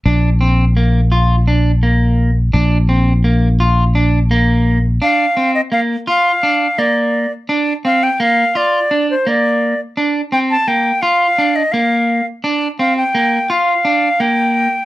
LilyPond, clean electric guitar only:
\new Staff \with { instrumentName = "Clean electric guitar" } { \time 7/8 \key bes \major \tempo 4 = 85 d'8 c'8 bes8 f'8 d'8 bes4 | d'8 c'8 bes8 f'8 d'8 bes4 | d'8 c'8 bes8 f'8 d'8 bes4 | d'8 c'8 bes8 f'8 d'8 bes4 |
d'8 c'8 bes8 f'8 d'8 bes4 | d'8 c'8 bes8 f'8 d'8 bes4 | }